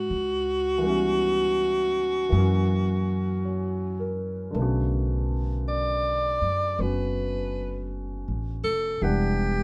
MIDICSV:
0, 0, Header, 1, 4, 480
1, 0, Start_track
1, 0, Tempo, 1115242
1, 41, Time_signature, 4, 2, 24, 8
1, 4146, End_track
2, 0, Start_track
2, 0, Title_t, "Alto saxophone"
2, 0, Program_c, 0, 65
2, 0, Note_on_c, 0, 66, 97
2, 1778, Note_off_c, 0, 66, 0
2, 2447, Note_on_c, 0, 74, 84
2, 2932, Note_on_c, 0, 71, 70
2, 2938, Note_off_c, 0, 74, 0
2, 3407, Note_off_c, 0, 71, 0
2, 3719, Note_on_c, 0, 69, 84
2, 3885, Note_on_c, 0, 67, 80
2, 3891, Note_off_c, 0, 69, 0
2, 4146, Note_off_c, 0, 67, 0
2, 4146, End_track
3, 0, Start_track
3, 0, Title_t, "Grand piano"
3, 0, Program_c, 1, 0
3, 0, Control_c, 1, 64, 127
3, 0, Note_on_c, 1, 61, 40
3, 0, Note_on_c, 1, 64, 50
3, 0, Note_on_c, 1, 69, 39
3, 45, Note_off_c, 1, 69, 0
3, 47, Note_off_c, 1, 61, 0
3, 47, Control_c, 1, 64, 0
3, 50, Note_off_c, 1, 64, 0
3, 117, Control_c, 1, 64, 127
3, 336, Note_on_c, 1, 52, 49
3, 348, Note_on_c, 1, 55, 42
3, 358, Note_on_c, 1, 59, 40
3, 372, Note_on_c, 1, 61, 40
3, 385, Note_on_c, 1, 64, 53
3, 980, Note_off_c, 1, 52, 0
3, 987, Note_on_c, 1, 52, 48
3, 993, Note_off_c, 1, 55, 0
3, 998, Note_off_c, 1, 59, 0
3, 999, Note_on_c, 1, 54, 47
3, 1001, Control_c, 1, 64, 0
3, 1005, Note_off_c, 1, 61, 0
3, 1010, Note_on_c, 1, 58, 44
3, 1011, Note_off_c, 1, 64, 0
3, 1024, Note_on_c, 1, 61, 44
3, 1033, Note_on_c, 1, 66, 51
3, 1070, Control_c, 1, 64, 127
3, 1485, Note_on_c, 1, 73, 33
3, 1719, Note_on_c, 1, 70, 39
3, 1864, Note_off_c, 1, 73, 0
3, 1940, Note_on_c, 1, 50, 40
3, 1955, Note_off_c, 1, 52, 0
3, 1955, Note_on_c, 1, 57, 40
3, 1962, Note_off_c, 1, 54, 0
3, 1963, Note_on_c, 1, 59, 42
3, 1965, Control_c, 1, 64, 0
3, 1967, Note_off_c, 1, 58, 0
3, 1974, Note_off_c, 1, 61, 0
3, 1977, Note_on_c, 1, 49, 42
3, 1979, Note_off_c, 1, 66, 0
3, 1988, Note_on_c, 1, 66, 46
3, 2054, Control_c, 1, 64, 127
3, 2063, Note_off_c, 1, 70, 0
3, 2916, Note_off_c, 1, 59, 0
3, 2923, Note_on_c, 1, 59, 35
3, 2930, Note_off_c, 1, 66, 0
3, 2931, Note_on_c, 1, 61, 32
3, 2937, Note_on_c, 1, 66, 42
3, 3872, Note_off_c, 1, 50, 0
3, 3879, Note_off_c, 1, 57, 0
3, 3879, Note_off_c, 1, 59, 0
3, 3881, Note_on_c, 1, 52, 46
3, 3883, Note_on_c, 1, 55, 41
3, 3885, Note_on_c, 1, 59, 40
3, 3885, Note_on_c, 1, 62, 43
3, 3887, Note_off_c, 1, 61, 0
3, 3887, Control_c, 1, 64, 0
3, 3890, Note_off_c, 1, 49, 0
3, 3890, Note_off_c, 1, 66, 0
3, 3891, Note_on_c, 1, 78, 52
3, 3958, Control_c, 1, 64, 127
3, 4146, Note_off_c, 1, 52, 0
3, 4146, Note_off_c, 1, 55, 0
3, 4146, Note_off_c, 1, 59, 0
3, 4146, Note_off_c, 1, 62, 0
3, 4146, Note_off_c, 1, 78, 0
3, 4146, End_track
4, 0, Start_track
4, 0, Title_t, "Upright bass"
4, 0, Program_c, 2, 32
4, 45, Note_on_c, 2, 37, 62
4, 980, Note_off_c, 2, 37, 0
4, 998, Note_on_c, 2, 42, 76
4, 1944, Note_off_c, 2, 42, 0
4, 1956, Note_on_c, 2, 35, 73
4, 2737, Note_off_c, 2, 35, 0
4, 2761, Note_on_c, 2, 42, 49
4, 2912, Note_off_c, 2, 42, 0
4, 2921, Note_on_c, 2, 30, 72
4, 3545, Note_off_c, 2, 30, 0
4, 3563, Note_on_c, 2, 33, 50
4, 3711, Note_off_c, 2, 33, 0
4, 3719, Note_on_c, 2, 29, 54
4, 3869, Note_off_c, 2, 29, 0
4, 3881, Note_on_c, 2, 28, 69
4, 4146, Note_off_c, 2, 28, 0
4, 4146, End_track
0, 0, End_of_file